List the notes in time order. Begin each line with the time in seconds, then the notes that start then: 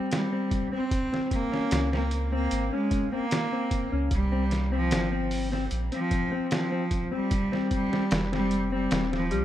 Already playing: C4
0.11 G3, snare, closed hi-hat
0.32 C4
0.51 kick, closed hi-hat
0.72 C4
0.91 kick, closed hi-hat
1.13 C4, snare
1.31 A#3, kick, closed hi-hat
1.52 C#4, snare
1.71 C#2, snare, closed hi-hat
1.93 A#3 C4, snare
2.11 closed hi-hat
2.32 A#3 C4
2.51 G#1, closed hi-hat
2.73 G#3 C#4
2.91 kick, closed hi-hat
3.12 A#3 C4
3.31 snare, closed hi-hat
3.52 C4
3.71 kick, closed hi-hat
3.92 C#2 C#4
4.11 C2 G3, kick, closed hi-hat
4.32 C4
4.51 snare, closed hi-hat
4.72 F3 C4
4.91 G1, snare, closed hi-hat
5.12 C4
5.31 open hi-hat
5.52 C4, snare
5.71 A#1, closed hi-hat
5.92 F3 C4, closed hi-hat
6.11 kick, closed hi-hat
6.32 C4
6.51 F3, snare, closed hi-hat
6.72 C4
6.91 kick, closed hi-hat
7.11 G3 C4
7.31 kick, closed hi-hat
7.52 C4, snare
7.71 G3, kick, closed hi-hat
7.93 C4, snare
8.11 F1, snare, closed hi-hat
8.32 G3 C4, snare
8.51 closed hi-hat
8.72 G3 C4
8.91 D#1, snare, closed hi-hat
9.12 F3 C4, snare
9.31 C2 G3, closed hi-hat